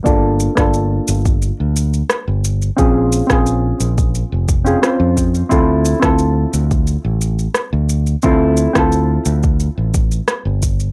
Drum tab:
SH |x-xxx-xxx-xxx-xx|x-xxx-xxx-xxx-xx|x-xxx-xxx-xxx-xx|x-xxx-xxx-xxx-xx|
SD |---r--------r---|---r--------r---|---r--------r---|---r--------r---|
BD |o--o---o--------|o--o---o--o---o-|o--o---o--------|o--o---o--o---o-|